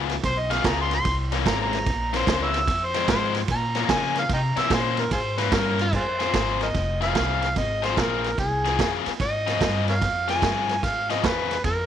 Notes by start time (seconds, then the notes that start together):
Already playing: C#2 C#3 B3 F4 G#4
0.10 snare, ride
0.23 B1 C5, kick, snare, ride
0.39 D#5
0.50 C#3 B3 F4 G#4 F5, snare, ride
0.64 C#2 C#3 B3 F4 G#4 A#5, kick, snare, ride
0.81 C6
0.91 C6, snare, ride
1.05 C2, kick, snare, ride
1.32 C3 E3 A#3 C#4, snare, ride
1.46 G#1 C3 E3 A#3 C#4 A#5, kick, snare, ride
1.62 A#5
1.73 snare, ride
1.86 A#1, kick, snare, ride
2.13 C3 E3 A#3 C#4 C5, snare, ride
2.27 C#2 C3 E3 A#3 C#4, kick, snare, ride
2.43 B4 C#5 E5
2.54 snare, ride
2.67 F2, kick, snare, ride
2.85 C5
2.94 F2 F3 G#3 C4, snare, ride
3.08 F2 G#2 F3 G#3 C4 C5, kick, snare, ride
3.35 snare, ride
3.48 A#2 A#5, kick, snare, ride
3.75 A#2 F3 A#3 C#4, snare, ride
3.89 A#2 C#3 F3 A#3 C#4 G#5, kick, snare, ride
4.15 F5, snare, ride
4.29 C3, kick, snare, ride
4.33 D#5 G5 A#5
4.56 C3 E3 A#3 C#4 E5, muted upright bass stroke, snare, ride
4.70 A#2 C3 E3 A#3 C#4 F4 G#4 C5, kick, snare, ride
4.97 A#4, snare, ride
5.11 G#2 F4 G#4 C5, kick, snare, ride
5.38 C3 E3 A#3 C#4 B4, snare, ride
5.52 G2 C3 E3 A#3 C#4 A#4, kick, snare, ride
5.79 F4, snare, ride
5.93 F2 F4 G#4 C5, kick, snare, crash
6.19 F3 C4 F4 G#4, snare, ride
6.34 G#1 F3 C4 F4 G#4, kick, snare, ride
6.61 A#4 C5 D#5, snare, ride
6.75 F1, kick, snare, ride
7.01 F3 C4 F4 G#4 F5, snare, ride
7.15 C2 F3 C4 F4 G#4, kick, snare, ride
7.42 snare, ride
7.56 G#1 D#5, kick, snare, ride
7.82 F3 C4 F4 G#4 C5, snare, ride
7.97 A#1 F3 C4 F4 G#4 A#4, kick, snare, ride
8.24 snare, ride
8.38 C2 G#4, kick, snare, ride
8.65 F3 C4 F4 G#4, snare, ride
8.79 F2 F3 C4 F4 G#4, kick, snare, ride
9.06 muted upright bass stroke, snare, ride
9.20 G#2 D#5, kick, snare, ride
9.47 F3 C4 F4 G#4, snare, ride
9.61 G2 F3 C4 F4 G#4, kick, snare, ride
9.88 A#4 C#5 F5, snare, ride
10.01 F2, kick, snare, ride
10.28 F3 C4 F4 G#4 G#5, snare, ride
10.42 G2 F3 C4 F4 G#4, kick, snare, ride
10.69 snare, ride
10.83 G#2 F5, kick, snare, ride
11.10 F3 C4 F4 G#4 D#5, snare, ride
11.24 E2 F3 C4 F4 G#4 B4, kick, snare, ride
11.51 snare, ride
11.64 F2 A#4, kick, snare, ride